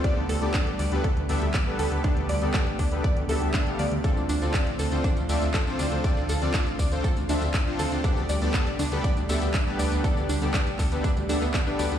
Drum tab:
HH |x-oxxxoxxxoxx-ox|xxo-xxoxxxoxxxox|x-oxxxoxxxoxx-ox|x-oxxxoxxxoxx-ox|
TB |----------------|----------------|xxxxxxxxxxxxxxxx|xxxxxxxxxxxxxxxx|
CP |----x-------x---|----x-------x---|----x-------x---|----x-------x---|
SD |r---------------|r---------------|r---------------|r---------------|
BD |o---o---o---o---|o---o-o-o---o---|o---o---o---o---|o---o-o-o---o---|

HH |x-oxxxoxxxoxx-ox|x-oxxxoxxxoxx-ox|
TB |xxxxxxxxxxxxxxxx|xxxxxxxxxxxxxxxx|
CP |----x-------x---|----x-x-----x---|
SD |r---------------|r---------r-----|
BD |o---o---o---o---|o---o-o-o---o---|